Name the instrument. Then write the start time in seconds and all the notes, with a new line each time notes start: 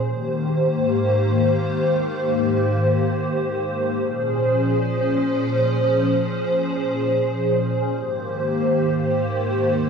analog synth pad
0.03 G#2 D#3 A#3 G4 C5
4.00 A#2 F3 C#4 G#4 C5
7.97 G#2 D#3 A#3 G4 C5